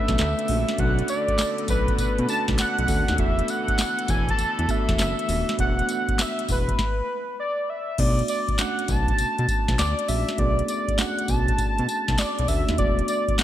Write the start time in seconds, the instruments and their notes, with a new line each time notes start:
Already playing: string section D3 A3 B3, tine electric piano A3 B3 C#4 D4 F#4 A4, analog synth lead E5
0.08 analog synth bass B1, kick, snare, closed hi-hat
0.18 analog synth bass D2, analog synth lead E5, snare, clap, closed hi-hat
0.39 closed hi-hat
0.48 analog synth bass A#1, tine electric piano A3 C#4 D4 F#4, open hi-hat
0.68 snare, closed hi-hat
0.78 analog synth bass B1, tine electric piano A3 B3 D4 F#4, analog synth lead F#5, kick, closed hi-hat
0.99 closed hi-hat
1.08 analog synth lead D5, closed hi-hat, tambourine
1.28 analog synth bass B1, kick, closed hi-hat
1.38 snare, clap, closed hi-hat, tambourine
1.58 closed hi-hat
1.68 analog synth bass B1, analog synth lead B4, kick, closed hi-hat, tambourine
1.88 kick, closed hi-hat
1.98 analog synth bass B2, analog synth lead B4, kick, closed hi-hat, tambourine
2.18 analog synth bass B2, closed hi-hat
2.28 tine electric piano A3 C#4 D4 F#4, analog synth lead A5, closed hi-hat, tambourine
2.48 analog synth bass B1, kick, snare, closed hi-hat
2.58 analog synth lead F#5, snare, clap, closed hi-hat, tambourine
2.79 analog synth bass B1, closed hi-hat
2.88 analog synth bass D2, tine electric piano A3 C#4 D4 F#4, kick, open hi-hat, tambourine
3.08 analog synth bass D#2, snare, closed hi-hat
3.17 analog synth bass E1, string section E3 A4, tine electric piano A3 B3 D4 F#4, analog synth lead E5, kick, closed hi-hat
3.39 closed hi-hat
3.48 analog synth lead F#5, closed hi-hat, tambourine
3.68 analog synth bass E1, kick, closed hi-hat
3.78 snare, clap, closed hi-hat, tambourine
3.99 closed hi-hat
4.08 analog synth bass E1, analog synth lead G#5, kick, closed hi-hat, tambourine
4.28 analog synth lead A5, kick, closed hi-hat
4.39 analog synth bass E2, closed hi-hat, tambourine
4.59 analog synth bass E2, closed hi-hat
4.68 tine electric piano A3 B3 D4 F#4, analog synth lead E5, kick, closed hi-hat, tambourine
4.89 analog synth bass E1, kick, snare, closed hi-hat
4.99 analog synth bass F#1, analog synth lead E5, snare, clap, closed hi-hat, tambourine
5.19 closed hi-hat
5.28 analog synth bass D#1, tine electric piano A3 B3 D4 F#4, open hi-hat, tambourine
5.49 snare, closed hi-hat
5.58 analog synth bass E1, tine electric piano A3 B3 D4 F#4, analog synth lead F#5, kick, closed hi-hat
5.79 closed hi-hat
5.89 closed hi-hat, tambourine
6.08 analog synth bass E1, kick, closed hi-hat
6.19 analog synth lead E5, snare, clap, closed hi-hat, tambourine
6.39 closed hi-hat
6.48 analog synth bass E1, analog synth lead B4, kick, open hi-hat, tambourine
6.69 kick, closed hi-hat
6.79 kick, snare
7.40 analog synth lead D5
7.70 analog synth lead E5
7.98 analog synth bass B1, tine electric piano A3 B3 D4 F#4, analog synth lead D5, kick, closed hi-hat, crash
8.19 closed hi-hat
8.28 analog synth lead D5, closed hi-hat, tambourine
8.48 analog synth bass B1, kick, closed hi-hat
8.58 tine electric piano A3 C#4 D4 F#4, analog synth lead F#5, snare, clap, closed hi-hat, tambourine
8.79 closed hi-hat
8.88 analog synth bass B1, analog synth lead A5, kick, closed hi-hat, tambourine
9.08 kick, closed hi-hat
9.18 analog synth bass B2, closed hi-hat, tambourine
9.39 analog synth bass B2, closed hi-hat
9.48 kick, closed hi-hat, tambourine
9.68 analog synth bass B1, kick, snare, closed hi-hat
9.78 analog synth bass D2, analog synth lead D5, snare, clap, closed hi-hat, tambourine
9.99 closed hi-hat
10.08 analog synth bass A#1, tine electric piano A3 C#4 D4 F#4, analog synth lead E5, open hi-hat, tambourine
10.28 snare, closed hi-hat
10.38 analog synth bass B1, tine electric piano A3 B3 D4 G#4, analog synth lead D5, kick, closed hi-hat
10.59 closed hi-hat
10.68 analog synth lead D5, closed hi-hat, tambourine
10.88 analog synth bass B1, kick, closed hi-hat
10.98 tine electric piano A3 C#4 D4 F#4, analog synth lead F#5, snare, clap, closed hi-hat, tambourine
11.19 closed hi-hat
11.28 analog synth bass B1, analog synth lead A5, kick, closed hi-hat, tambourine
11.48 kick, closed hi-hat
11.58 analog synth bass B2, kick, closed hi-hat, tambourine
11.78 analog synth bass B2, closed hi-hat
11.89 closed hi-hat, tambourine
12.08 analog synth bass B1, kick, snare, closed hi-hat
12.18 analog synth lead D5, snare, clap, closed hi-hat, tambourine
12.39 analog synth bass B1, closed hi-hat
12.48 analog synth bass D2, tine electric piano A3 C#4 D4 F#4, analog synth lead E5, kick, open hi-hat, tambourine
12.68 analog synth bass D#2, snare, closed hi-hat
12.78 analog synth bass E1, tine electric piano A3 B3 D4 F#4, analog synth lead D5, kick, closed hi-hat
12.99 closed hi-hat
13.08 analog synth lead D5, closed hi-hat, tambourine
13.28 analog synth bass E1, kick, closed hi-hat
13.38 tine electric piano G#3 A3 B3 D4, analog synth lead F#5, snare, clap, closed hi-hat, tambourine